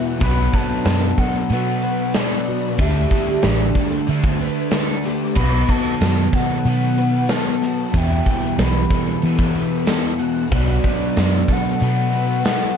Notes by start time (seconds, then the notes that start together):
Already playing: E2 B2 E3 G3 B3 F#4
0.19 B1 B2 F#3 B3 F#4 B5, kick, open hi-hat
0.25 F#4
0.52 F#3 B3 A5, kick, open hi-hat
0.85 F#2 B2 F#3 B3, snare, open hi-hat
1.17 F#3 B3 A4 F#5, kick, open hi-hat
1.50 B2 F#3 B3 F#5, open hi-hat
1.82 F#3 B3 B4, open hi-hat
2.14 B2 F#3 B3 A4 D5, snare, open hi-hat
2.46 B3 F#4, open hi-hat
2.50 F#3
2.78 D2 D3 G3 A3 D4 G4 A4 E5, kick, open hi-hat
3.10 A3 D4, kick, open hi-hat
3.42 A1 D3 A3 D5, snare, open hi-hat
3.46 D4
3.74 A3 D4 A4, kick, open hi-hat
4.07 D3 A3, open hi-hat
4.11 D4
4.24 kick
4.39 A3 D4 B4, open hi-hat
4.71 D3 A3 D4 A4, snare, open hi-hat
5.04 A3 D4 G4, snare, open hi-hat
5.35 B1 B2 D#3 F#3 B3 F#4 B5, kick, crash
5.40 B3 F#4
5.69 F#3 B3 A5, kick, open hi-hat
6.01 F#2 B2 F#3 B3, snare, open hi-hat
6.33 F#3 B3 A4 F#5, kick, open hi-hat
6.64 B2 F#3 F#5, open hi-hat
6.68 B3
6.98 F#3 B3 B4, open hi-hat
7.29 B2 F#3 A4 A5, snare, open hi-hat
7.33 B3
7.62 F#3 B3 F#4, snare, open hi-hat
7.94 E2 B2 E3 E4 G5, kick, open hi-hat
8.26 B2 E3, kick, open hi-hat
8.58 B1 E2 B2 E3 B5, snare, open hi-hat
8.90 B2 E3 A4, kick, open hi-hat
9.22 E2 B2 E3, open hi-hat
9.39 kick
9.55 B2 E3 B4, open hi-hat
9.87 E2 B2 E3 A4, snare, open hi-hat
10.19 B2 E3 F#4, open hi-hat
10.51 B1 B2 F#3 A3 B3 D4 F#4 D5, kick, open hi-hat
10.84 F#3 B3, kick, open hi-hat
11.17 F#2 B2 F#3 B3, snare, open hi-hat
11.48 F#3 B3 A4 F#5, kick, open hi-hat
11.80 B2 F#3 B3 F#5, open hi-hat
12.13 F#3 B3 B4, open hi-hat
12.44 B2 F#3 B3 A4, snare, open hi-hat